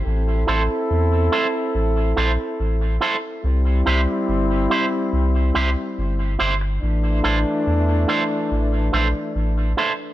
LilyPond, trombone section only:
\new Staff \with { instrumentName = "Trombone section" } { \time 4/4 \key a \minor \tempo 4 = 71 <c' e' a'>2.~ <c' e' a'>8 r8 | <g c' e'>2.~ <g c' e'>8 r8 | <e a d'>2.~ <e a d'>8 r8 | }